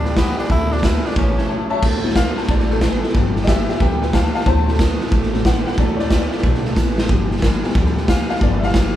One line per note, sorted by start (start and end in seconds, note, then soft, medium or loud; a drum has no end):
0.00 0.30 D2 medium
0.00 0.19 D4 loud
0.00 0.16 G4 medium
0.05 0.15 G2 medium
0.05 0.16 D3 medium
0.05 0.14 F3 soft
0.05 0.15 G3 soft
0.05 0.17 B3 soft
0.05 0.12 D5 medium
0.05 0.12 G5 medium
0.05 0.12 B5 medium
0.05 snare soft
0.15 0.36 G2 medium
0.15 0.36 E3 loud
0.15 0.38 F3 medium
0.15 0.38 G3 medium
0.15 0.39 B3 medium
0.15 0.37 B3 medium
0.15 0.35 G4 medium
0.15 0.30 D5 medium
0.15 0.30 G5 medium
0.15 0.30 B5 loud
0.15 kick medium
0.15 snare loud
0.15 hi-hat pedal medium
0.36 0.49 G2 medium
0.36 0.49 E3 medium
0.36 0.48 F3 medium
0.36 0.49 G3 soft
0.36 0.50 B3 medium
0.36 0.50 D4 medium
0.36 0.49 G4 medium
0.36 0.45 D5 medium
0.36 0.46 G5 medium
0.36 0.46 B5 loud
0.36 snare soft
0.44 snare soft
0.49 0.96 D2 medium
0.49 0.71 D3 medium
0.49 0.69 D3 medium
0.49 0.71 A3 medium
0.49 0.69 A3 medium
0.49 0.71 C4 medium
0.49 0.74 E4 loud
0.49 0.69 F#4 medium
0.49 0.63 D5 medium
0.49 0.63 F#5 medium
0.49 0.63 A5 loud
0.49 kick loud
0.49 snare soft
0.70 0.81 D3 medium
0.70 0.82 A3 medium
0.70 0.82 A3 soft
0.70 0.83 C4 medium
0.70 0.86 D4 medium
0.70 0.83 F#4 medium
0.70 0.78 D5 medium
0.70 0.79 F#5 medium
0.70 0.79 A5 medium
0.70 snare soft
0.77 snare soft
0.82 1.04 D3 medium
0.82 1.02 D3 medium
0.82 1.05 A3 medium
0.82 1.02 B3 medium
0.82 1.04 C4 medium
0.82 1.08 E4 medium
0.82 1.02 F#4 medium
0.82 0.96 D5 medium
0.82 0.96 F#5 medium
0.82 0.96 A5 medium
0.82 kick medium
0.82 snare loud
0.82 hi-hat pedal medium
1.04 1.15 D3 medium
1.04 1.16 A3 soft
1.04 1.15 B3 medium
1.04 1.17 C4 soft
1.04 1.17 D4 medium
1.04 1.16 F#4 medium
1.04 1.12 D5 medium
1.04 1.12 F#5 medium
1.04 1.12 A5 medium
1.04 snare soft
1.11 snare soft
1.16 1.39 A1 medium
1.16 1.37 A2 medium
1.16 1.35 A2 medium
1.16 1.38 E3 medium
1.16 1.36 E3 medium
1.16 1.38 G3 medium
1.16 1.37 C#4 medium
1.16 1.48 C#4 medium
1.16 1.36 E4 medium
1.16 1.29 C#5 medium
1.16 1.29 E5 medium
1.16 1.30 A5 medium
1.16 kick loud
1.16 snare soft
1.37 1.48 A2 medium
1.37 1.48 E3 medium
1.37 1.48 G3 soft
1.37 1.49 C#4 medium
1.37 1.49 E4 medium
1.37 1.45 C#5 medium
1.37 1.45 E5 medium
1.37 1.45 A5 medium
1.37 snare soft
1.48 1.69 A2 medium
1.48 1.70 E3 medium
1.48 1.69 F#3 medium
1.48 1.71 G3 medium
1.48 1.71 C#4 medium
1.48 1.69 E4 medium
1.48 1.62 C#5 loud
1.48 1.62 E5 medium
1.48 1.62 A5 loud
1.70 1.81 A2 medium
1.70 1.82 F#3 medium
1.70 1.83 G3 medium
1.70 1.83 C#4 medium
1.70 1.82 E4 medium
1.70 1.77 C#5 loud
1.70 1.78 E5 loud
1.70 1.78 A5 loud
1.82 2.29 D2 medium
1.82 2.04 D3 medium
1.82 2.02 D3 medium
1.82 2.04 A3 loud
1.82 2.02 A3 medium
1.82 2.04 C4 loud
1.82 2.02 F#4 medium
1.82 kick loud
1.82 snare soft
1.82 crash loud
2.03 2.14 D3 medium
2.03 3.10 E3 medium
2.03 3.11 F#3 soft
2.03 2.15 A3 medium
2.03 3.11 C4 medium
2.03 2.16 C4 medium
2.03 2.15 F#4 medium
2.03 snare soft
2.10 snare soft
2.15 2.37 D3 medium
2.15 2.35 D3 medium
2.15 2.37 A3 medium
2.15 2.35 B3 medium
2.15 2.37 C4 medium
2.15 2.35 F#4 medium
2.15 2.37 F5 loud
2.15 kick medium
2.15 snare loud
2.15 hi-hat pedal medium
2.36 2.47 D3 medium
2.36 2.47 A3 soft
2.36 2.48 B3 medium
2.36 2.48 C4 medium
2.36 2.48 F#4 medium
2.36 2.49 A5 medium
2.36 snare soft
2.43 snare soft
2.48 2.95 A1 medium
2.48 2.70 D3 medium
2.48 2.68 D3 medium
2.48 2.70 A3 medium
2.48 2.68 A3 medium
2.48 2.70 C4 medium
2.48 2.68 F#4 medium
2.48 2.70 D5 medium
2.48 kick loud
2.48 snare soft
2.59 snare soft
2.69 2.80 D3 medium
2.69 2.81 A3 medium
2.69 2.81 A3 soft
2.69 2.81 C4 soft
2.69 2.81 F#4 medium
2.69 3.35 A4 medium
2.69 snare soft
2.81 3.02 D3 medium
2.81 3.01 D3 medium
2.81 3.03 A3 medium
2.81 3.01 B3 medium
2.81 3.03 C4 medium
2.81 3.01 F#4 medium
2.81 kick medium
2.81 snare loud
2.81 hi-hat pedal medium
3.02 3.13 D3 medium
3.02 3.15 A3 medium
3.02 3.14 B3 medium
3.02 3.15 C4 medium
3.02 3.14 F#4 medium
3.02 snare soft
3.09 snare soft
3.14 3.61 G1 loud
3.14 3.36 G2 medium
3.14 3.34 G2 medium
3.14 3.36 D3 medium
3.14 3.34 D3 medium
3.14 3.66 F3 medium
3.14 3.36 F3 medium
3.14 3.36 G3 medium
3.14 3.66 A3 medium
3.14 3.67 B3 medium
3.14 3.35 B3 loud
3.14 3.34 G4 loud
3.14 kick loud
3.14 snare soft
3.35 3.46 G2 medium
3.35 3.47 D3 medium
3.35 3.45 F3 medium
3.35 3.47 G3 medium
3.35 3.48 B3 medium
3.35 3.47 G4 medium
3.35 snare soft
3.42 3.47 D#5 medium
3.42 snare soft
3.47 3.67 G2 medium
3.47 3.67 E3 medium
3.47 3.69 F3 medium
3.47 3.69 G3 medium
3.47 3.68 B3 medium
3.47 3.67 G4 medium
3.47 3.68 E5 loud
3.47 kick loud
3.47 snare loud
3.47 hi-hat pedal loud
3.68 3.79 G2 medium
3.68 3.79 E3 medium
3.68 3.80 F3 soft
3.68 3.80 G3 medium
3.68 3.81 B3 soft
3.68 3.80 G4 soft
3.68 3.80 G4 medium
3.68 3.81 E5 medium
3.68 snare soft
3.75 snare soft
3.80 4.27 D2 medium
3.80 4.02 G2 medium
3.80 4.00 G2 medium
3.80 4.02 D3 medium
3.80 4.00 D3 medium
3.80 4.00 F3 medium
3.80 4.02 F3 medium
3.80 4.02 G3 medium
3.80 4.00 A3 soft
3.80 4.00 B3 medium
3.80 4.01 B3 medium
3.80 4.00 G4 medium
3.80 4.00 B4 medium
3.80 4.01 G5 medium
3.80 kick loud
3.80 snare soft
4.01 4.12 G2 medium
4.01 4.12 D3 medium
4.01 4.11 F3 soft
4.01 4.13 G3 soft
4.01 4.14 B3 medium
4.01 4.13 G4 medium
4.01 4.13 B4 medium
4.01 4.13 G5 medium
4.01 snare soft
4.12 4.32 G2 medium
4.12 4.33 E3 loud
4.12 4.34 F3 medium
4.12 4.35 G3 medium
4.12 4.34 B3 medium
4.12 4.33 G4 medium
4.12 4.33 F5 medium
4.12 4.34 A5 medium
4.12 kick medium
4.12 snare loud
4.12 hi-hat pedal medium
4.34 4.45 G2 medium
4.34 4.46 E3 medium
4.34 4.45 F3 soft
4.34 4.46 G3 medium
4.34 4.47 B3 medium
4.34 4.46 G4 medium
4.34 4.46 F5 medium
4.34 4.46 A5 medium
4.34 snare soft
4.41 snare soft
4.45 4.93 D2 loud
4.45 4.67 D3 medium
4.45 4.65 D3 medium
4.45 4.71 E3 medium
4.45 4.71 F#3 soft
4.45 4.68 A3 medium
4.45 4.66 A3 medium
4.45 4.68 C4 medium
4.45 4.72 C4 medium
4.45 4.66 F#4 medium
4.45 4.77 C5 medium
4.45 4.79 A5 loud
4.45 kick loud
4.45 snare soft
4.67 4.78 D3 medium
4.67 4.78 A3 medium
4.67 4.78 A3 soft
4.67 4.80 C4 medium
4.67 4.79 F#4 medium
4.67 snare soft
4.74 snare soft
4.78 5.00 D3 medium
4.78 4.98 D3 medium
4.78 5.01 A3 medium
4.78 4.99 B3 medium
4.78 5.00 C4 medium
4.78 4.98 F#4 medium
4.78 kick loud
4.78 snare loud
4.78 hi-hat pedal loud
4.99 5.11 D3 medium
4.99 5.11 A3 medium
4.99 5.11 B3 medium
4.99 5.11 C4 medium
4.99 5.12 F#4 medium
4.99 snare soft
5.06 snare soft
5.11 5.58 A1 medium
5.11 5.33 D3 medium
5.11 5.31 D3 medium
5.11 5.33 A3 medium
5.11 5.32 A3 medium
5.11 5.32 C4 medium
5.11 5.31 F#4 loud
5.11 kick loud
5.11 snare soft
5.23 snare soft
5.32 5.43 D3 medium
5.32 5.44 E3 medium
5.32 5.44 F#3 soft
5.32 5.44 A3 medium
5.32 5.44 C4 medium
5.32 5.45 C4 medium
5.32 5.44 F#4 medium
5.32 snare soft
5.44 5.66 D3 medium
5.44 5.64 D3 medium
5.44 5.67 A3 medium
5.44 5.64 B3 loud
5.44 5.66 C4 medium
5.44 5.64 F#4 medium
5.44 5.65 F#5 loud
5.44 kick medium
5.44 snare loud
5.44 hi-hat pedal medium
5.66 5.76 D3 medium
5.66 5.77 A3 soft
5.66 5.77 B3 medium
5.66 5.78 C4 soft
5.66 5.78 F#4 medium
5.66 5.78 F#5 loud
5.66 snare soft
5.72 snare soft
5.78 6.24 D2 medium
5.78 5.99 D3 medium
5.78 5.97 D3 medium
5.78 6.29 E3 medium
5.78 6.30 F#3 medium
5.78 5.97 A3 loud
5.78 6.00 A3 medium
5.78 6.30 C4 medium
5.78 5.99 C4 medium
5.78 5.97 F#4 medium
5.78 5.99 D5 medium
5.78 kick loud
5.78 snare soft
5.96 6.10 D3 medium
5.96 6.10 A3 medium
5.96 6.11 F#4 medium
5.96 5.98 C#5 medium
5.96 snare soft
6.00 6.10 A3 medium
6.00 6.11 C4 medium
6.00 6.96 D5 loud
6.10 6.32 D3 medium
6.10 6.30 D3 medium
6.10 6.32 A3 medium
6.10 6.31 B3 medium
6.10 6.31 C4 medium
6.10 6.30 F#4 medium
6.10 kick medium
6.10 snare loud
6.10 hi-hat pedal loud
6.31 6.42 D3 medium
6.31 6.43 A3 soft
6.31 6.43 B3 loud
6.31 6.43 C4 soft
6.31 6.43 F#4 medium
6.31 snare soft
6.38 snare soft
6.43 6.72 B1 loud
6.43 6.65 D3 medium
6.43 6.63 D3 medium
6.43 6.65 A3 loud
6.43 6.63 A3 medium
6.43 6.64 C4 medium
6.43 6.63 F#4 loud
6.43 kick loud
6.43 snare soft
6.54 snare soft
6.64 6.75 D3 medium
6.64 6.76 A3 medium
6.64 6.76 A3 soft
6.64 6.77 C4 medium
6.64 6.76 F#4 medium
6.64 snare soft
6.76 7.05 A1 medium
6.76 6.98 D3 medium
6.76 6.96 D3 medium
6.76 6.98 A3 medium
6.76 6.96 B3 loud
6.76 6.98 C4 medium
6.76 6.96 F#4 medium
6.76 kick medium
6.76 snare medium
6.76 hi-hat pedal medium
6.97 7.08 D3 medium
6.97 7.10 A3 medium
6.97 7.09 B3 medium
6.97 7.10 C4 medium
6.97 7.09 F#4 medium
6.97 snare medium
7.09 7.56 G1 medium
7.09 7.31 G2 medium
7.09 7.29 G2 medium
7.09 7.31 D3 medium
7.09 7.29 D3 medium
7.09 7.31 F3 medium
7.09 7.31 G3 medium
7.09 7.30 B3 loud
7.09 7.29 G4 medium
7.09 kick loud
7.09 snare soft
7.30 7.41 G2 medium
7.30 7.41 D3 medium
7.30 7.41 F3 medium
7.30 7.42 G3 medium
7.30 7.43 B3 medium
7.30 7.42 G4 medium
7.30 snare soft
7.37 snare soft
7.42 7.62 G2 medium
7.42 7.62 E3 loud
7.42 7.64 F3 medium
7.42 7.64 G3 medium
7.42 7.63 B3 medium
7.42 7.62 G4 medium
7.42 kick medium
7.42 snare loud
7.42 hi-hat pedal medium
7.63 7.74 G2 medium
7.63 7.74 E3 medium
7.63 7.83 F3 medium
7.63 7.74 F3 medium
7.63 7.75 G3 medium
7.63 7.83 A3 medium
7.63 7.83 B3 medium
7.63 7.75 B3 medium
7.63 7.75 G4 medium
7.63 snare soft
7.69 snare soft
7.74 8.21 D2 medium
7.74 7.96 G2 medium
7.74 7.95 G2 medium
7.74 7.97 D3 medium
7.74 7.95 D3 medium
7.74 7.97 F3 loud
7.74 7.96 G3 medium
7.74 7.96 B3 loud
7.74 7.94 G4 medium
7.74 kick loud
7.74 snare soft
7.86 snare soft
7.95 8.07 G2 medium
7.95 8.07 D3 medium
7.95 8.06 F3 medium
7.95 8.07 G3 medium
7.95 8.08 B3 medium
7.95 8.08 G4 medium
7.95 snare soft
8.07 8.28 G2 medium
8.07 8.28 E3 loud
8.07 8.29 F3 medium
8.07 8.30 G3 medium
8.07 8.29 B3 medium
8.07 8.27 G4 medium
8.07 8.29 F5 loud
8.07 kick medium
8.07 snare loud
8.07 hi-hat pedal medium
8.29 8.40 G2 medium
8.29 8.40 E3 medium
8.29 8.41 F3 soft
8.29 8.41 G3 medium
8.29 8.41 B3 medium
8.29 8.41 G4 medium
8.29 8.41 F5 loud
8.29 snare soft
8.36 snare soft
8.41 8.87 G1 loud
8.41 8.62 G2 medium
8.41 8.60 G2 medium
8.41 8.63 D3 medium
8.41 8.61 D3 medium
8.41 8.66 F3 medium
8.41 8.63 F3 medium
8.41 8.63 G3 medium
8.41 8.66 A3 medium
8.41 8.66 B3 medium
8.41 8.62 B3 medium
8.41 8.61 G4 medium
8.41 8.63 D5 loud
8.41 kick loud
8.41 snare soft
8.60 8.73 G2 medium
8.60 8.73 D3 medium
8.60 8.75 B3 medium
8.60 8.74 G4 medium
8.60 8.62 E5 medium
8.60 snare soft
8.64 8.73 F3 soft
8.64 8.74 G3 soft
8.64 8.96 F5 loud
8.64 snare soft
8.74 8.93 G2 medium
8.74 8.94 E3 medium
8.74 8.96 F3 medium
8.74 8.96 G3 medium
8.74 8.96 B3 medium
8.74 8.94 G4 medium
8.74 kick loud
8.74 snare loud
8.74 hi-hat pedal loud